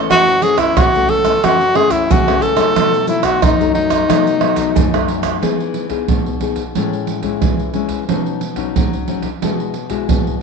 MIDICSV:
0, 0, Header, 1, 6, 480
1, 0, Start_track
1, 0, Key_signature, 4, "major"
1, 0, Tempo, 665188
1, 81, Time_signature, 4, 2, 24, 8
1, 7521, End_track
2, 0, Start_track
2, 0, Title_t, "Tenor saxophone"
2, 0, Program_c, 0, 66
2, 80, Note_on_c, 0, 66, 104
2, 309, Note_on_c, 0, 68, 92
2, 320, Note_off_c, 0, 66, 0
2, 422, Note_on_c, 0, 64, 83
2, 433, Note_off_c, 0, 68, 0
2, 557, Note_on_c, 0, 66, 94
2, 567, Note_off_c, 0, 64, 0
2, 791, Note_on_c, 0, 69, 95
2, 802, Note_off_c, 0, 66, 0
2, 1038, Note_on_c, 0, 66, 90
2, 1049, Note_off_c, 0, 69, 0
2, 1267, Note_on_c, 0, 68, 92
2, 1277, Note_off_c, 0, 66, 0
2, 1378, Note_on_c, 0, 64, 83
2, 1389, Note_off_c, 0, 68, 0
2, 1526, Note_on_c, 0, 66, 90
2, 1537, Note_off_c, 0, 64, 0
2, 1749, Note_on_c, 0, 69, 94
2, 1760, Note_off_c, 0, 66, 0
2, 2220, Note_off_c, 0, 69, 0
2, 2225, Note_on_c, 0, 64, 71
2, 2338, Note_on_c, 0, 66, 76
2, 2349, Note_off_c, 0, 64, 0
2, 2473, Note_on_c, 0, 63, 81
2, 2484, Note_off_c, 0, 66, 0
2, 2699, Note_off_c, 0, 63, 0
2, 2703, Note_on_c, 0, 63, 78
2, 3641, Note_off_c, 0, 63, 0
2, 7521, End_track
3, 0, Start_track
3, 0, Title_t, "Nylon-string guitar"
3, 0, Program_c, 1, 24
3, 0, Note_on_c, 1, 52, 62
3, 0, Note_on_c, 1, 57, 65
3, 0, Note_on_c, 1, 61, 70
3, 69, Note_on_c, 1, 42, 64
3, 269, Note_off_c, 1, 52, 0
3, 271, Note_off_c, 1, 61, 0
3, 272, Note_off_c, 1, 57, 0
3, 306, Note_on_c, 1, 52, 54
3, 308, Note_on_c, 1, 57, 59
3, 309, Note_on_c, 1, 61, 59
3, 530, Note_off_c, 1, 42, 0
3, 538, Note_off_c, 1, 52, 0
3, 539, Note_off_c, 1, 57, 0
3, 539, Note_off_c, 1, 61, 0
3, 556, Note_on_c, 1, 49, 68
3, 687, Note_on_c, 1, 52, 62
3, 691, Note_on_c, 1, 57, 64
3, 694, Note_on_c, 1, 61, 66
3, 885, Note_off_c, 1, 52, 0
3, 886, Note_off_c, 1, 57, 0
3, 888, Note_off_c, 1, 61, 0
3, 893, Note_on_c, 1, 52, 66
3, 897, Note_on_c, 1, 57, 57
3, 900, Note_on_c, 1, 61, 61
3, 988, Note_off_c, 1, 52, 0
3, 990, Note_off_c, 1, 57, 0
3, 991, Note_off_c, 1, 61, 0
3, 1013, Note_off_c, 1, 49, 0
3, 1034, Note_on_c, 1, 42, 66
3, 1036, Note_on_c, 1, 57, 58
3, 1038, Note_on_c, 1, 52, 55
3, 1041, Note_on_c, 1, 61, 60
3, 1179, Note_off_c, 1, 52, 0
3, 1179, Note_off_c, 1, 57, 0
3, 1180, Note_off_c, 1, 61, 0
3, 1256, Note_on_c, 1, 52, 55
3, 1264, Note_on_c, 1, 57, 58
3, 1265, Note_on_c, 1, 61, 63
3, 1492, Note_off_c, 1, 42, 0
3, 1492, Note_off_c, 1, 52, 0
3, 1496, Note_off_c, 1, 57, 0
3, 1497, Note_off_c, 1, 61, 0
3, 1517, Note_on_c, 1, 49, 67
3, 1642, Note_on_c, 1, 52, 64
3, 1645, Note_on_c, 1, 57, 62
3, 1648, Note_on_c, 1, 61, 75
3, 1842, Note_off_c, 1, 57, 0
3, 1843, Note_off_c, 1, 52, 0
3, 1845, Note_off_c, 1, 61, 0
3, 1850, Note_on_c, 1, 54, 65
3, 1852, Note_on_c, 1, 57, 64
3, 1857, Note_on_c, 1, 63, 67
3, 1973, Note_off_c, 1, 49, 0
3, 1995, Note_on_c, 1, 47, 65
3, 2186, Note_off_c, 1, 54, 0
3, 2187, Note_off_c, 1, 57, 0
3, 2188, Note_off_c, 1, 63, 0
3, 2221, Note_on_c, 1, 54, 54
3, 2224, Note_on_c, 1, 57, 50
3, 2227, Note_on_c, 1, 63, 61
3, 2452, Note_off_c, 1, 47, 0
3, 2455, Note_off_c, 1, 54, 0
3, 2456, Note_off_c, 1, 57, 0
3, 2457, Note_off_c, 1, 63, 0
3, 2475, Note_on_c, 1, 42, 71
3, 2600, Note_on_c, 1, 54, 64
3, 2604, Note_on_c, 1, 57, 66
3, 2608, Note_on_c, 1, 63, 67
3, 2921, Note_off_c, 1, 54, 0
3, 2922, Note_off_c, 1, 57, 0
3, 2924, Note_off_c, 1, 63, 0
3, 2932, Note_off_c, 1, 42, 0
3, 2948, Note_on_c, 1, 47, 68
3, 2950, Note_on_c, 1, 54, 59
3, 2953, Note_on_c, 1, 57, 49
3, 2954, Note_on_c, 1, 63, 64
3, 3155, Note_off_c, 1, 54, 0
3, 3157, Note_off_c, 1, 57, 0
3, 3157, Note_off_c, 1, 63, 0
3, 3183, Note_on_c, 1, 54, 60
3, 3186, Note_on_c, 1, 57, 54
3, 3189, Note_on_c, 1, 63, 58
3, 3409, Note_off_c, 1, 47, 0
3, 3431, Note_on_c, 1, 42, 64
3, 3512, Note_off_c, 1, 54, 0
3, 3513, Note_off_c, 1, 57, 0
3, 3515, Note_off_c, 1, 63, 0
3, 3563, Note_on_c, 1, 54, 61
3, 3565, Note_on_c, 1, 57, 61
3, 3569, Note_on_c, 1, 63, 67
3, 3882, Note_off_c, 1, 54, 0
3, 3882, Note_off_c, 1, 57, 0
3, 3885, Note_off_c, 1, 63, 0
3, 3890, Note_off_c, 1, 42, 0
3, 3910, Note_on_c, 1, 52, 58
3, 3913, Note_on_c, 1, 59, 46
3, 3916, Note_on_c, 1, 63, 43
3, 3916, Note_on_c, 1, 68, 51
3, 4236, Note_off_c, 1, 59, 0
3, 4236, Note_off_c, 1, 63, 0
3, 4238, Note_off_c, 1, 68, 0
3, 4254, Note_on_c, 1, 59, 49
3, 4258, Note_on_c, 1, 63, 45
3, 4262, Note_on_c, 1, 68, 55
3, 4371, Note_off_c, 1, 52, 0
3, 4393, Note_on_c, 1, 47, 58
3, 4588, Note_off_c, 1, 59, 0
3, 4590, Note_off_c, 1, 63, 0
3, 4592, Note_off_c, 1, 68, 0
3, 4625, Note_on_c, 1, 59, 46
3, 4630, Note_on_c, 1, 63, 45
3, 4632, Note_on_c, 1, 68, 52
3, 4774, Note_off_c, 1, 59, 0
3, 4775, Note_off_c, 1, 63, 0
3, 4776, Note_off_c, 1, 68, 0
3, 4852, Note_off_c, 1, 47, 0
3, 4880, Note_on_c, 1, 45, 59
3, 4883, Note_on_c, 1, 56, 45
3, 4884, Note_on_c, 1, 64, 52
3, 4886, Note_on_c, 1, 61, 49
3, 5202, Note_off_c, 1, 56, 0
3, 5203, Note_off_c, 1, 61, 0
3, 5203, Note_off_c, 1, 64, 0
3, 5219, Note_on_c, 1, 56, 51
3, 5223, Note_on_c, 1, 61, 49
3, 5226, Note_on_c, 1, 64, 59
3, 5336, Note_off_c, 1, 45, 0
3, 5360, Note_on_c, 1, 52, 56
3, 5551, Note_off_c, 1, 56, 0
3, 5553, Note_off_c, 1, 61, 0
3, 5555, Note_off_c, 1, 64, 0
3, 5587, Note_on_c, 1, 56, 50
3, 5590, Note_on_c, 1, 61, 49
3, 5593, Note_on_c, 1, 64, 53
3, 5795, Note_off_c, 1, 56, 0
3, 5797, Note_off_c, 1, 61, 0
3, 5799, Note_off_c, 1, 64, 0
3, 5816, Note_off_c, 1, 52, 0
3, 5838, Note_on_c, 1, 47, 58
3, 5840, Note_on_c, 1, 54, 45
3, 5844, Note_on_c, 1, 63, 51
3, 5845, Note_on_c, 1, 61, 46
3, 6065, Note_off_c, 1, 54, 0
3, 6066, Note_off_c, 1, 61, 0
3, 6067, Note_off_c, 1, 63, 0
3, 6181, Note_on_c, 1, 54, 54
3, 6185, Note_on_c, 1, 61, 53
3, 6189, Note_on_c, 1, 63, 59
3, 6296, Note_off_c, 1, 47, 0
3, 6318, Note_off_c, 1, 54, 0
3, 6327, Note_on_c, 1, 54, 59
3, 6514, Note_off_c, 1, 61, 0
3, 6517, Note_off_c, 1, 63, 0
3, 6544, Note_off_c, 1, 54, 0
3, 6552, Note_on_c, 1, 54, 53
3, 6556, Note_on_c, 1, 61, 46
3, 6561, Note_on_c, 1, 63, 51
3, 6698, Note_off_c, 1, 54, 0
3, 6700, Note_off_c, 1, 61, 0
3, 6702, Note_off_c, 1, 63, 0
3, 6802, Note_on_c, 1, 47, 60
3, 6806, Note_on_c, 1, 56, 47
3, 6806, Note_on_c, 1, 64, 52
3, 6809, Note_on_c, 1, 66, 55
3, 7028, Note_off_c, 1, 56, 0
3, 7030, Note_off_c, 1, 64, 0
3, 7030, Note_off_c, 1, 66, 0
3, 7139, Note_on_c, 1, 56, 56
3, 7144, Note_on_c, 1, 64, 54
3, 7145, Note_on_c, 1, 66, 55
3, 7259, Note_off_c, 1, 47, 0
3, 7284, Note_on_c, 1, 47, 56
3, 7474, Note_off_c, 1, 56, 0
3, 7475, Note_off_c, 1, 64, 0
3, 7476, Note_off_c, 1, 66, 0
3, 7521, Note_off_c, 1, 47, 0
3, 7521, End_track
4, 0, Start_track
4, 0, Title_t, "Pandeiro"
4, 77, Note_on_c, 9, 54, 85
4, 149, Note_off_c, 9, 54, 0
4, 202, Note_on_c, 9, 54, 34
4, 274, Note_off_c, 9, 54, 0
4, 302, Note_on_c, 9, 54, 58
4, 375, Note_off_c, 9, 54, 0
4, 416, Note_on_c, 9, 54, 62
4, 488, Note_off_c, 9, 54, 0
4, 554, Note_on_c, 9, 54, 78
4, 626, Note_off_c, 9, 54, 0
4, 685, Note_on_c, 9, 54, 33
4, 757, Note_off_c, 9, 54, 0
4, 784, Note_on_c, 9, 54, 57
4, 856, Note_off_c, 9, 54, 0
4, 899, Note_on_c, 9, 54, 62
4, 971, Note_off_c, 9, 54, 0
4, 1037, Note_on_c, 9, 54, 82
4, 1109, Note_off_c, 9, 54, 0
4, 1163, Note_on_c, 9, 54, 33
4, 1235, Note_off_c, 9, 54, 0
4, 1266, Note_on_c, 9, 54, 53
4, 1338, Note_off_c, 9, 54, 0
4, 1374, Note_on_c, 9, 54, 68
4, 1446, Note_off_c, 9, 54, 0
4, 1520, Note_on_c, 9, 54, 88
4, 1592, Note_off_c, 9, 54, 0
4, 1646, Note_on_c, 9, 54, 32
4, 1718, Note_off_c, 9, 54, 0
4, 1746, Note_on_c, 9, 54, 55
4, 1819, Note_off_c, 9, 54, 0
4, 1852, Note_on_c, 9, 54, 65
4, 1924, Note_off_c, 9, 54, 0
4, 1994, Note_on_c, 9, 54, 81
4, 2066, Note_off_c, 9, 54, 0
4, 2121, Note_on_c, 9, 54, 35
4, 2193, Note_off_c, 9, 54, 0
4, 2218, Note_on_c, 9, 54, 56
4, 2290, Note_off_c, 9, 54, 0
4, 2331, Note_on_c, 9, 54, 64
4, 2403, Note_off_c, 9, 54, 0
4, 2470, Note_on_c, 9, 54, 81
4, 2542, Note_off_c, 9, 54, 0
4, 2603, Note_on_c, 9, 54, 34
4, 2675, Note_off_c, 9, 54, 0
4, 2705, Note_on_c, 9, 54, 57
4, 2778, Note_off_c, 9, 54, 0
4, 2817, Note_on_c, 9, 54, 62
4, 2889, Note_off_c, 9, 54, 0
4, 2957, Note_on_c, 9, 54, 84
4, 3029, Note_off_c, 9, 54, 0
4, 3080, Note_on_c, 9, 54, 34
4, 3152, Note_off_c, 9, 54, 0
4, 3182, Note_on_c, 9, 54, 56
4, 3254, Note_off_c, 9, 54, 0
4, 3293, Note_on_c, 9, 54, 72
4, 3365, Note_off_c, 9, 54, 0
4, 3435, Note_on_c, 9, 54, 85
4, 3507, Note_off_c, 9, 54, 0
4, 3564, Note_on_c, 9, 54, 33
4, 3637, Note_off_c, 9, 54, 0
4, 3668, Note_on_c, 9, 54, 54
4, 3740, Note_off_c, 9, 54, 0
4, 3774, Note_on_c, 9, 54, 63
4, 3846, Note_off_c, 9, 54, 0
4, 3915, Note_on_c, 9, 54, 72
4, 3988, Note_off_c, 9, 54, 0
4, 4043, Note_on_c, 9, 54, 28
4, 4115, Note_off_c, 9, 54, 0
4, 4142, Note_on_c, 9, 54, 50
4, 4214, Note_off_c, 9, 54, 0
4, 4255, Note_on_c, 9, 54, 57
4, 4327, Note_off_c, 9, 54, 0
4, 4390, Note_on_c, 9, 54, 70
4, 4462, Note_off_c, 9, 54, 0
4, 4519, Note_on_c, 9, 54, 27
4, 4592, Note_off_c, 9, 54, 0
4, 4623, Note_on_c, 9, 54, 53
4, 4695, Note_off_c, 9, 54, 0
4, 4732, Note_on_c, 9, 54, 53
4, 4804, Note_off_c, 9, 54, 0
4, 4873, Note_on_c, 9, 54, 70
4, 4945, Note_off_c, 9, 54, 0
4, 5003, Note_on_c, 9, 54, 29
4, 5075, Note_off_c, 9, 54, 0
4, 5103, Note_on_c, 9, 54, 49
4, 5175, Note_off_c, 9, 54, 0
4, 5215, Note_on_c, 9, 54, 58
4, 5287, Note_off_c, 9, 54, 0
4, 5351, Note_on_c, 9, 54, 74
4, 5424, Note_off_c, 9, 54, 0
4, 5480, Note_on_c, 9, 54, 28
4, 5552, Note_off_c, 9, 54, 0
4, 5582, Note_on_c, 9, 54, 48
4, 5654, Note_off_c, 9, 54, 0
4, 5691, Note_on_c, 9, 54, 57
4, 5763, Note_off_c, 9, 54, 0
4, 5836, Note_on_c, 9, 54, 72
4, 5908, Note_off_c, 9, 54, 0
4, 5963, Note_on_c, 9, 54, 29
4, 6035, Note_off_c, 9, 54, 0
4, 6068, Note_on_c, 9, 54, 51
4, 6140, Note_off_c, 9, 54, 0
4, 6178, Note_on_c, 9, 54, 56
4, 6250, Note_off_c, 9, 54, 0
4, 6320, Note_on_c, 9, 54, 73
4, 6393, Note_off_c, 9, 54, 0
4, 6446, Note_on_c, 9, 54, 30
4, 6518, Note_off_c, 9, 54, 0
4, 6550, Note_on_c, 9, 54, 49
4, 6622, Note_off_c, 9, 54, 0
4, 6657, Note_on_c, 9, 54, 57
4, 6729, Note_off_c, 9, 54, 0
4, 6799, Note_on_c, 9, 54, 69
4, 6871, Note_off_c, 9, 54, 0
4, 6926, Note_on_c, 9, 54, 30
4, 6998, Note_off_c, 9, 54, 0
4, 7026, Note_on_c, 9, 54, 46
4, 7099, Note_off_c, 9, 54, 0
4, 7141, Note_on_c, 9, 54, 58
4, 7213, Note_off_c, 9, 54, 0
4, 7280, Note_on_c, 9, 54, 74
4, 7352, Note_off_c, 9, 54, 0
4, 7411, Note_on_c, 9, 54, 29
4, 7483, Note_off_c, 9, 54, 0
4, 7521, End_track
5, 0, Start_track
5, 0, Title_t, "Tamborim"
5, 77, Note_on_c, 9, 60, 80
5, 149, Note_off_c, 9, 60, 0
5, 416, Note_on_c, 9, 60, 81
5, 488, Note_off_c, 9, 60, 0
5, 554, Note_on_c, 9, 60, 84
5, 626, Note_off_c, 9, 60, 0
5, 899, Note_on_c, 9, 60, 76
5, 971, Note_off_c, 9, 60, 0
5, 1037, Note_on_c, 9, 60, 83
5, 1109, Note_off_c, 9, 60, 0
5, 1266, Note_on_c, 9, 60, 79
5, 1338, Note_off_c, 9, 60, 0
5, 1646, Note_on_c, 9, 60, 78
5, 1718, Note_off_c, 9, 60, 0
5, 1852, Note_on_c, 9, 60, 82
5, 1924, Note_off_c, 9, 60, 0
5, 1994, Note_on_c, 9, 60, 81
5, 2066, Note_off_c, 9, 60, 0
5, 2331, Note_on_c, 9, 60, 83
5, 2403, Note_off_c, 9, 60, 0
5, 2470, Note_on_c, 9, 60, 83
5, 2542, Note_off_c, 9, 60, 0
5, 2817, Note_on_c, 9, 60, 79
5, 2889, Note_off_c, 9, 60, 0
5, 2957, Note_on_c, 9, 60, 79
5, 3029, Note_off_c, 9, 60, 0
5, 3182, Note_on_c, 9, 60, 80
5, 3254, Note_off_c, 9, 60, 0
5, 3564, Note_on_c, 9, 60, 81
5, 3637, Note_off_c, 9, 60, 0
5, 3774, Note_on_c, 9, 60, 74
5, 3846, Note_off_c, 9, 60, 0
5, 7521, End_track
6, 0, Start_track
6, 0, Title_t, "Drums"
6, 77, Note_on_c, 9, 82, 81
6, 77, Note_on_c, 9, 87, 60
6, 149, Note_off_c, 9, 82, 0
6, 149, Note_off_c, 9, 87, 0
6, 202, Note_on_c, 9, 82, 32
6, 274, Note_off_c, 9, 82, 0
6, 302, Note_on_c, 9, 82, 68
6, 375, Note_off_c, 9, 82, 0
6, 416, Note_on_c, 9, 82, 79
6, 416, Note_on_c, 9, 87, 31
6, 488, Note_off_c, 9, 82, 0
6, 488, Note_off_c, 9, 87, 0
6, 554, Note_on_c, 9, 82, 83
6, 554, Note_on_c, 9, 87, 106
6, 626, Note_off_c, 9, 82, 0
6, 626, Note_off_c, 9, 87, 0
6, 685, Note_on_c, 9, 82, 34
6, 757, Note_off_c, 9, 82, 0
6, 784, Note_on_c, 9, 87, 31
6, 856, Note_off_c, 9, 87, 0
6, 899, Note_on_c, 9, 82, 78
6, 899, Note_on_c, 9, 87, 31
6, 971, Note_off_c, 9, 82, 0
6, 971, Note_off_c, 9, 87, 0
6, 1037, Note_on_c, 9, 82, 83
6, 1037, Note_on_c, 9, 87, 58
6, 1109, Note_off_c, 9, 82, 0
6, 1109, Note_off_c, 9, 87, 0
6, 1163, Note_on_c, 9, 82, 31
6, 1235, Note_off_c, 9, 82, 0
6, 1374, Note_on_c, 9, 82, 83
6, 1374, Note_on_c, 9, 87, 34
6, 1446, Note_off_c, 9, 82, 0
6, 1446, Note_off_c, 9, 87, 0
6, 1520, Note_on_c, 9, 82, 83
6, 1520, Note_on_c, 9, 87, 110
6, 1592, Note_off_c, 9, 82, 0
6, 1592, Note_off_c, 9, 87, 0
6, 1646, Note_on_c, 9, 82, 35
6, 1718, Note_off_c, 9, 82, 0
6, 1746, Note_on_c, 9, 82, 65
6, 1819, Note_off_c, 9, 82, 0
6, 1852, Note_on_c, 9, 82, 75
6, 1852, Note_on_c, 9, 87, 32
6, 1924, Note_off_c, 9, 82, 0
6, 1924, Note_off_c, 9, 87, 0
6, 1994, Note_on_c, 9, 82, 77
6, 1994, Note_on_c, 9, 87, 61
6, 2066, Note_off_c, 9, 82, 0
6, 2066, Note_off_c, 9, 87, 0
6, 2121, Note_on_c, 9, 82, 32
6, 2193, Note_off_c, 9, 82, 0
6, 2218, Note_on_c, 9, 82, 69
6, 2290, Note_off_c, 9, 82, 0
6, 2331, Note_on_c, 9, 82, 77
6, 2331, Note_on_c, 9, 87, 33
6, 2403, Note_off_c, 9, 82, 0
6, 2403, Note_off_c, 9, 87, 0
6, 2470, Note_on_c, 9, 82, 80
6, 2470, Note_on_c, 9, 87, 103
6, 2542, Note_off_c, 9, 82, 0
6, 2542, Note_off_c, 9, 87, 0
6, 2603, Note_on_c, 9, 82, 34
6, 2675, Note_off_c, 9, 82, 0
6, 2817, Note_on_c, 9, 82, 76
6, 2817, Note_on_c, 9, 87, 31
6, 2889, Note_off_c, 9, 82, 0
6, 2889, Note_off_c, 9, 87, 0
6, 2957, Note_on_c, 9, 82, 82
6, 2957, Note_on_c, 9, 87, 61
6, 3029, Note_off_c, 9, 82, 0
6, 3029, Note_off_c, 9, 87, 0
6, 3080, Note_on_c, 9, 82, 34
6, 3152, Note_off_c, 9, 82, 0
6, 3293, Note_on_c, 9, 82, 80
6, 3293, Note_on_c, 9, 87, 34
6, 3365, Note_off_c, 9, 82, 0
6, 3365, Note_off_c, 9, 87, 0
6, 3435, Note_on_c, 9, 82, 86
6, 3435, Note_on_c, 9, 87, 107
6, 3507, Note_off_c, 9, 82, 0
6, 3507, Note_off_c, 9, 87, 0
6, 3564, Note_on_c, 9, 82, 34
6, 3637, Note_off_c, 9, 82, 0
6, 3774, Note_on_c, 9, 82, 80
6, 3774, Note_on_c, 9, 87, 33
6, 3846, Note_off_c, 9, 82, 0
6, 3846, Note_off_c, 9, 87, 0
6, 3915, Note_on_c, 9, 87, 52
6, 3988, Note_off_c, 9, 87, 0
6, 4255, Note_on_c, 9, 87, 28
6, 4327, Note_off_c, 9, 87, 0
6, 4390, Note_on_c, 9, 87, 88
6, 4462, Note_off_c, 9, 87, 0
6, 4623, Note_on_c, 9, 87, 26
6, 4695, Note_off_c, 9, 87, 0
6, 4732, Note_on_c, 9, 87, 27
6, 4804, Note_off_c, 9, 87, 0
6, 4873, Note_on_c, 9, 87, 50
6, 4945, Note_off_c, 9, 87, 0
6, 5215, Note_on_c, 9, 87, 29
6, 5287, Note_off_c, 9, 87, 0
6, 5351, Note_on_c, 9, 87, 87
6, 5424, Note_off_c, 9, 87, 0
6, 5691, Note_on_c, 9, 87, 28
6, 5763, Note_off_c, 9, 87, 0
6, 5836, Note_on_c, 9, 87, 53
6, 5908, Note_off_c, 9, 87, 0
6, 6178, Note_on_c, 9, 87, 29
6, 6250, Note_off_c, 9, 87, 0
6, 6320, Note_on_c, 9, 87, 89
6, 6393, Note_off_c, 9, 87, 0
6, 6550, Note_on_c, 9, 87, 26
6, 6622, Note_off_c, 9, 87, 0
6, 6657, Note_on_c, 9, 87, 28
6, 6729, Note_off_c, 9, 87, 0
6, 6799, Note_on_c, 9, 87, 51
6, 6871, Note_off_c, 9, 87, 0
6, 7141, Note_on_c, 9, 87, 29
6, 7213, Note_off_c, 9, 87, 0
6, 7280, Note_on_c, 9, 87, 94
6, 7352, Note_off_c, 9, 87, 0
6, 7521, End_track
0, 0, End_of_file